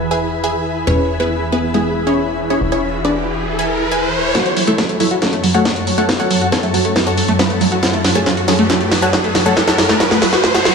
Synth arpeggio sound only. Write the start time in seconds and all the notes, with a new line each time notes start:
4.35 F#3
4.46 F#4
4.57 F#3
4.67 A3
4.78 F#3
4.89 A3
5.00 F#3
5.11 F#4
5.22 F#3
5.33 A3
5.44 F#3
5.54 A3
5.65 F#3
5.76 F#4
5.87 F#3
5.98 A3
6.09 F#3
6.20 A3
6.31 F#3
6.41 F#4
6.52 F#3
6.63 A3
6.74 F#3
6.85 A3
6.96 F#3
7.07 F#4
7.18 F#3
7.28 A3
7.39 F#3
7.50 A3
7.61 F#3
7.72 F#4
7.83 F#3
7.94 A3
8.05 F#3
8.15 A3
8.26 F#3
8.37 F#4
8.48 F#3
8.59 A3
8.70 F#3
8.81 A3
8.92 F#3
9.02 F#4
9.13 F#3
9.24 A3
9.35 F#3
9.46 A3
9.57 F#3
9.68 F#4
9.78 F#3
9.89 A3
10.00 F#3
10.11 A3
10.22 F#3
10.33 F#4
10.44 F#3
10.54 A3
10.65 F#3